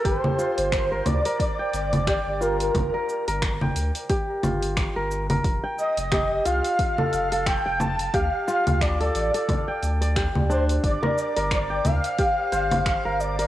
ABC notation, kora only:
X:1
M:4/4
L:1/16
Q:"Swing 16ths" 1/4=89
K:Gm
V:1 name="Kora"
G z F z2 B2 B z g z2 G z F z | z B2 B z g z2 G z F z2 B2 B | z g z2 G z F z2 A2 A z g z2 | G z F z2 A2 A z g z d G z D z |
z B2 B z g z2 G z c3 B2 B |]